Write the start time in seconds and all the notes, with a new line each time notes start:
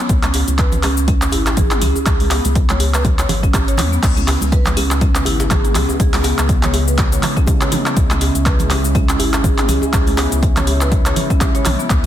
0.09 C#2, kick, closed hi-hat, muted conga, cabasa
0.23 C#4, clap, closed hi-hat, high conga, cabasa
0.34 open hi-hat, djembe slap, cabasa
0.48 C#2, closed hi-hat, muted conga, high conga, cabasa
0.58 B4, kick, clap, closed hi-hat, cabasa
0.72 closed hi-hat, muted conga, high conga, low conga, cabasa
0.83 C#4, clap, open hi-hat, djembe tone, high conga, cabasa
0.97 muted conga, cabasa
1.08 C#4, kick, closed hi-hat, high conga, cabasa
1.22 clap, closed hi-hat, muted conga, cabasa
1.32 G#1 E4, open hi-hat, djembe tone, cabasa
1.46 clap, closed hi-hat, djembe slap, cabasa
1.57 G#4, kick, closed hi-hat, muted conga, low conga, cabasa
1.71 clap, closed hi-hat, mid tom, cabasa
1.82 C#2 C#4, open hi-hat, muted conga, djembe tone, low conga, cabasa
1.96 djembe tone, cabasa
2.06 C#2 G#4, kick, clap, closed hi-hat, muted conga, cabasa
2.20 open hi-hat, high conga, cabasa
2.31 B3, clap, open hi-hat, djembe slap, cabasa
2.45 C#2, closed hi-hat, muted conga, high conga, cabasa
2.55 kick, closed hi-hat, cabasa
2.69 C#5, clap, closed hi-hat, muted conga, high conga, low conga, cabasa
2.80 open hi-hat, djembe tone, high conga, cabasa
2.94 B4, clap, closed hi-hat, muted conga, cabasa
3.05 C#2, kick, closed hi-hat, djembe tone, low conga, cabasa
3.18 C#5, clap, closed hi-hat, muted conga, cabasa
3.29 G#1, open hi-hat, djembe slap, low conga, cabasa
3.43 C#4, kick, closed hi-hat, cabasa
3.53 kick, clap, closed hi-hat, muted conga, djembe tone, cabasa
3.68 C#5, closed hi-hat, cabasa
3.77 E2, clap, open hi-hat, mid tom, muted conga, low conga, cabasa
3.92 B3, cabasa
4.03 C#2 C#3 G#3 B3 E4, kick, clap, closed hi-hat, crash, muted conga, cabasa
4.17 C#4, closed hi-hat, high conga, cabasa
4.28 clap, open hi-hat, djembe slap, cabasa
4.41 C#2, closed hi-hat, muted conga, high conga, cabasa
4.52 B4, kick, closed hi-hat, cabasa
4.65 clap, closed hi-hat, muted conga, high conga, low conga, cabasa
4.77 C#4, open hi-hat, djembe tone, high conga, cabasa
4.91 clap, muted conga, cabasa
5.01 C#4, kick, closed hi-hat, high conga, cabasa
5.15 clap, closed hi-hat, muted conga, cabasa
5.25 G#1 E4, open hi-hat, djembe tone, cabasa
5.40 closed hi-hat, djembe slap, cabasa
5.51 G#4, kick, clap, closed hi-hat, muted conga, low conga, cabasa
5.65 closed hi-hat, mid tom, cabasa
5.75 C#2 C#4, clap, open hi-hat, muted conga, djembe tone, low conga, cabasa
5.89 djembe tone, cabasa
6.00 C#2 G#4, kick, closed hi-hat, muted conga, cabasa
6.14 clap, open hi-hat, high conga, cabasa
6.24 B3, open hi-hat, djembe slap, cabasa
6.38 C#2, clap, closed hi-hat, muted conga, high conga, cabasa
6.49 kick, closed hi-hat, cabasa
6.63 C#5, clap, closed hi-hat, muted conga, high conga, low conga, cabasa
6.74 open hi-hat, djembe tone, high conga, cabasa
6.88 B4, muted conga, cabasa
6.98 kick, clap, closed hi-hat, cabasa
7.12 C#5, closed hi-hat, muted conga, cabasa
7.23 clap, open hi-hat, low conga, cabasa
7.36 C#4, kick, closed hi-hat, cabasa
7.47 kick, closed hi-hat, muted conga, djembe tone, cabasa
7.61 C#5, clap, closed hi-hat, cabasa
7.72 open hi-hat, mid tom, muted conga, low conga, cabasa
7.86 B3, clap, cabasa
7.96 C#2 C#4, kick, closed hi-hat, muted conga, cabasa
8.10 C#4, clap, closed hi-hat, high conga, cabasa
8.21 open hi-hat, djembe slap, cabasa
8.35 C#2, closed hi-hat, muted conga, high conga, cabasa
8.46 B4, kick, clap, closed hi-hat, cabasa
8.59 closed hi-hat, muted conga, high conga, low conga, cabasa
8.70 C#4, clap, open hi-hat, high conga, djembe tone, cabasa
8.84 muted conga, cabasa
8.95 C#4, kick, closed hi-hat, high conga, cabasa
9.09 clap, closed hi-hat, muted conga, cabasa
9.19 G#1 E4, open hi-hat, djembe tone, cabasa
9.33 clap, closed hi-hat, djembe slap, cabasa
9.44 G#4, kick, closed hi-hat, muted conga, low conga, cabasa
9.58 clap, closed hi-hat, mid tom, cabasa
9.68 C#2 C#4, open hi-hat, muted conga, djembe tone, low conga, cabasa
9.82 djembe tone, cabasa
9.93 C#2 G#4, kick, clap, closed hi-hat, muted conga, cabasa
10.07 open hi-hat, high conga, cabasa
10.17 B3, clap, open hi-hat, djembe slap, cabasa
10.31 C#2, closed hi-hat, muted conga, high conga, cabasa
10.43 kick, closed hi-hat, cabasa
10.56 C#5, clap, closed hi-hat, muted conga, high conga, low conga, cabasa
10.67 open hi-hat, djembe tone, high conga, cabasa
10.81 B4, clap, muted conga, cabasa
10.92 kick, closed hi-hat, cabasa
11.06 C#5, clap, closed hi-hat, muted conga, cabasa
11.16 open hi-hat, low conga, cabasa
11.30 C#4, kick, closed hi-hat, cabasa
11.41 kick, clap, closed hi-hat, muted conga, djembe tone, cabasa
11.55 C#5, closed hi-hat, cabasa
11.65 B1, clap, open hi-hat, mid tom, muted conga, low conga, cabasa
11.79 B3, cabasa
11.90 C#2 G#2 E3 B3, kick, clap, closed hi-hat, muted conga, cabasa